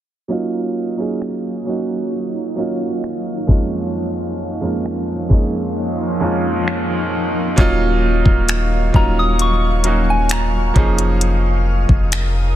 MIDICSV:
0, 0, Header, 1, 6, 480
1, 0, Start_track
1, 0, Tempo, 909091
1, 160, Time_signature, 4, 2, 24, 8
1, 6631, End_track
2, 0, Start_track
2, 0, Title_t, "Synth bell"
2, 0, Program_c, 0, 98
2, 4730, Note_on_c, 0, 82, 87
2, 4849, Note_off_c, 0, 82, 0
2, 4853, Note_on_c, 0, 87, 94
2, 4970, Note_off_c, 0, 87, 0
2, 4972, Note_on_c, 0, 85, 95
2, 5333, Note_on_c, 0, 80, 80
2, 5336, Note_off_c, 0, 85, 0
2, 5450, Note_off_c, 0, 80, 0
2, 5452, Note_on_c, 0, 82, 76
2, 5785, Note_off_c, 0, 82, 0
2, 6631, End_track
3, 0, Start_track
3, 0, Title_t, "Ambient pad"
3, 0, Program_c, 1, 92
3, 159, Note_on_c, 1, 54, 67
3, 159, Note_on_c, 1, 77, 76
3, 160, Note_on_c, 1, 63, 69
3, 160, Note_on_c, 1, 73, 65
3, 1823, Note_off_c, 1, 54, 0
3, 1823, Note_off_c, 1, 63, 0
3, 1840, Note_on_c, 1, 53, 76
3, 1841, Note_on_c, 1, 63, 69
3, 1842, Note_on_c, 1, 58, 72
3, 3979, Note_off_c, 1, 53, 0
3, 3979, Note_off_c, 1, 63, 0
3, 3979, Note_off_c, 1, 73, 0
3, 3979, Note_off_c, 1, 77, 0
3, 3980, Note_off_c, 1, 58, 0
3, 4001, Note_on_c, 1, 77, 66
3, 4002, Note_on_c, 1, 85, 76
3, 4003, Note_on_c, 1, 54, 73
3, 5664, Note_off_c, 1, 54, 0
3, 5664, Note_off_c, 1, 85, 0
3, 5682, Note_on_c, 1, 70, 80
3, 5683, Note_on_c, 1, 87, 82
3, 6631, Note_off_c, 1, 70, 0
3, 6631, Note_off_c, 1, 77, 0
3, 6631, Note_off_c, 1, 87, 0
3, 6631, End_track
4, 0, Start_track
4, 0, Title_t, "Grand piano"
4, 0, Program_c, 2, 0
4, 149, Note_on_c, 2, 54, 93
4, 154, Note_on_c, 2, 58, 94
4, 159, Note_on_c, 2, 61, 84
4, 165, Note_on_c, 2, 63, 94
4, 170, Note_on_c, 2, 65, 106
4, 265, Control_c, 2, 64, 127
4, 426, Note_off_c, 2, 54, 0
4, 429, Note_off_c, 2, 58, 0
4, 431, Note_off_c, 2, 61, 0
4, 434, Note_off_c, 2, 63, 0
4, 437, Note_off_c, 2, 65, 0
4, 510, Note_on_c, 2, 54, 73
4, 515, Note_on_c, 2, 58, 64
4, 520, Note_on_c, 2, 61, 64
4, 526, Note_on_c, 2, 63, 66
4, 530, Note_on_c, 2, 68, 80
4, 787, Note_off_c, 2, 54, 0
4, 789, Note_off_c, 2, 58, 0
4, 792, Note_off_c, 2, 61, 0
4, 795, Note_off_c, 2, 63, 0
4, 797, Note_off_c, 2, 68, 0
4, 871, Note_on_c, 2, 54, 77
4, 875, Note_on_c, 2, 58, 74
4, 881, Note_on_c, 2, 61, 71
4, 887, Note_on_c, 2, 63, 72
4, 891, Note_on_c, 2, 66, 87
4, 1238, Note_off_c, 2, 54, 0
4, 1240, Note_off_c, 2, 58, 0
4, 1243, Note_off_c, 2, 61, 0
4, 1246, Note_off_c, 2, 63, 0
4, 1248, Note_off_c, 2, 66, 0
4, 1349, Note_on_c, 2, 54, 82
4, 1355, Note_on_c, 2, 58, 78
4, 1360, Note_on_c, 2, 61, 78
4, 1365, Note_on_c, 2, 63, 75
4, 1370, Note_on_c, 2, 65, 88
4, 1832, Note_off_c, 2, 58, 0
4, 1832, Note_on_c, 2, 41, 76
4, 1834, Note_off_c, 2, 54, 0
4, 1836, Note_off_c, 2, 61, 0
4, 1836, Note_on_c, 2, 56, 76
4, 1840, Note_on_c, 2, 58, 71
4, 1841, Note_off_c, 2, 63, 0
4, 1844, Note_off_c, 2, 65, 0
4, 1844, Note_on_c, 2, 61, 75
4, 1846, Control_c, 2, 64, 0
4, 1848, Note_on_c, 2, 63, 71
4, 1852, Note_on_c, 2, 65, 86
4, 1943, Control_c, 2, 64, 127
4, 2316, Note_off_c, 2, 41, 0
4, 2318, Note_off_c, 2, 56, 0
4, 2320, Note_off_c, 2, 58, 0
4, 2322, Note_off_c, 2, 61, 0
4, 2324, Note_off_c, 2, 63, 0
4, 2326, Note_off_c, 2, 65, 0
4, 2432, Note_on_c, 2, 41, 70
4, 2436, Note_on_c, 2, 56, 68
4, 2440, Note_on_c, 2, 58, 65
4, 2444, Note_on_c, 2, 61, 65
4, 2449, Note_on_c, 2, 63, 64
4, 2454, Note_on_c, 2, 65, 76
4, 2708, Note_off_c, 2, 41, 0
4, 2710, Note_off_c, 2, 56, 0
4, 2712, Note_off_c, 2, 58, 0
4, 2714, Note_off_c, 2, 61, 0
4, 2716, Note_off_c, 2, 63, 0
4, 2719, Note_off_c, 2, 65, 0
4, 2792, Note_on_c, 2, 41, 79
4, 2795, Note_on_c, 2, 56, 75
4, 2800, Note_on_c, 2, 58, 73
4, 2804, Note_on_c, 2, 61, 74
4, 2809, Note_on_c, 2, 63, 71
4, 2813, Note_on_c, 2, 68, 86
4, 3158, Note_off_c, 2, 41, 0
4, 3160, Note_off_c, 2, 56, 0
4, 3162, Note_off_c, 2, 58, 0
4, 3164, Note_off_c, 2, 61, 0
4, 3167, Note_off_c, 2, 63, 0
4, 3169, Note_off_c, 2, 68, 0
4, 3273, Note_on_c, 2, 41, 81
4, 3276, Note_on_c, 2, 56, 72
4, 3280, Note_on_c, 2, 58, 74
4, 3284, Note_on_c, 2, 61, 74
4, 3288, Note_on_c, 2, 63, 72
4, 3293, Note_on_c, 2, 65, 88
4, 3820, Note_off_c, 2, 41, 0
4, 3821, Note_off_c, 2, 56, 0
4, 3823, Note_off_c, 2, 58, 0
4, 3826, Note_off_c, 2, 61, 0
4, 3828, Note_off_c, 2, 63, 0
4, 3830, Note_off_c, 2, 65, 0
4, 3993, Note_on_c, 2, 54, 101
4, 3997, Note_on_c, 2, 58, 97
4, 4002, Note_on_c, 2, 61, 97
4, 4008, Control_c, 2, 64, 0
4, 4008, Note_on_c, 2, 63, 99
4, 4013, Note_on_c, 2, 65, 120
4, 4094, Control_c, 2, 64, 127
4, 4540, Note_off_c, 2, 54, 0
4, 4542, Note_off_c, 2, 58, 0
4, 4544, Note_off_c, 2, 61, 0
4, 4547, Note_off_c, 2, 63, 0
4, 4550, Note_off_c, 2, 65, 0
4, 4712, Note_on_c, 2, 54, 73
4, 4717, Note_on_c, 2, 58, 65
4, 4722, Note_on_c, 2, 61, 66
4, 4728, Note_on_c, 2, 63, 68
4, 4733, Note_on_c, 2, 65, 76
4, 5078, Note_off_c, 2, 54, 0
4, 5081, Note_off_c, 2, 58, 0
4, 5083, Note_off_c, 2, 61, 0
4, 5086, Note_off_c, 2, 63, 0
4, 5088, Note_off_c, 2, 65, 0
4, 5191, Note_on_c, 2, 54, 65
4, 5197, Note_on_c, 2, 58, 64
4, 5201, Note_on_c, 2, 61, 60
4, 5207, Note_on_c, 2, 63, 62
4, 5212, Note_on_c, 2, 66, 74
4, 5668, Note_off_c, 2, 58, 0
4, 5670, Note_on_c, 2, 53, 75
4, 5674, Note_off_c, 2, 61, 0
4, 5675, Note_off_c, 2, 54, 0
4, 5676, Note_on_c, 2, 58, 69
4, 5679, Note_off_c, 2, 63, 0
4, 5682, Note_on_c, 2, 61, 66
4, 5686, Note_off_c, 2, 66, 0
4, 5687, Control_c, 2, 64, 0
4, 5687, Note_on_c, 2, 63, 64
4, 5692, Note_on_c, 2, 68, 80
4, 5773, Control_c, 2, 64, 127
4, 6443, Note_off_c, 2, 53, 0
4, 6446, Note_off_c, 2, 58, 0
4, 6449, Note_off_c, 2, 61, 0
4, 6451, Note_off_c, 2, 63, 0
4, 6454, Note_off_c, 2, 68, 0
4, 6631, End_track
5, 0, Start_track
5, 0, Title_t, "808-style bass"
5, 0, Program_c, 3, 38
5, 4002, Note_on_c, 3, 27, 101
5, 4347, Note_off_c, 3, 27, 0
5, 4361, Note_on_c, 3, 27, 100
5, 4706, Note_off_c, 3, 27, 0
5, 4723, Note_on_c, 3, 27, 99
5, 5660, Note_off_c, 3, 27, 0
5, 5681, Note_on_c, 3, 29, 94
5, 6259, Note_off_c, 3, 29, 0
5, 6280, Note_on_c, 3, 29, 94
5, 6631, Note_off_c, 3, 29, 0
5, 6631, End_track
6, 0, Start_track
6, 0, Title_t, "Drums"
6, 643, Note_on_c, 9, 26, 102
6, 696, Note_off_c, 9, 26, 0
6, 1605, Note_on_c, 9, 26, 99
6, 1658, Note_off_c, 9, 26, 0
6, 1841, Note_on_c, 9, 36, 99
6, 1894, Note_off_c, 9, 36, 0
6, 2565, Note_on_c, 9, 26, 105
6, 2617, Note_off_c, 9, 26, 0
6, 2802, Note_on_c, 9, 36, 91
6, 2854, Note_off_c, 9, 36, 0
6, 3525, Note_on_c, 9, 26, 111
6, 3578, Note_off_c, 9, 26, 0
6, 4001, Note_on_c, 9, 36, 100
6, 4001, Note_on_c, 9, 42, 64
6, 4053, Note_off_c, 9, 42, 0
6, 4054, Note_off_c, 9, 36, 0
6, 4359, Note_on_c, 9, 36, 97
6, 4412, Note_off_c, 9, 36, 0
6, 4480, Note_on_c, 9, 42, 72
6, 4485, Note_on_c, 9, 26, 106
6, 4533, Note_off_c, 9, 42, 0
6, 4538, Note_off_c, 9, 26, 0
6, 4721, Note_on_c, 9, 36, 96
6, 4774, Note_off_c, 9, 36, 0
6, 4960, Note_on_c, 9, 42, 72
6, 5013, Note_off_c, 9, 42, 0
6, 5195, Note_on_c, 9, 42, 65
6, 5248, Note_off_c, 9, 42, 0
6, 5435, Note_on_c, 9, 42, 68
6, 5444, Note_on_c, 9, 26, 106
6, 5488, Note_off_c, 9, 42, 0
6, 5497, Note_off_c, 9, 26, 0
6, 5680, Note_on_c, 9, 36, 101
6, 5680, Note_on_c, 9, 42, 39
6, 5733, Note_off_c, 9, 36, 0
6, 5733, Note_off_c, 9, 42, 0
6, 5800, Note_on_c, 9, 42, 63
6, 5853, Note_off_c, 9, 42, 0
6, 5920, Note_on_c, 9, 42, 67
6, 5973, Note_off_c, 9, 42, 0
6, 6278, Note_on_c, 9, 36, 97
6, 6331, Note_off_c, 9, 36, 0
6, 6400, Note_on_c, 9, 42, 73
6, 6404, Note_on_c, 9, 26, 105
6, 6452, Note_off_c, 9, 42, 0
6, 6457, Note_off_c, 9, 26, 0
6, 6631, End_track
0, 0, End_of_file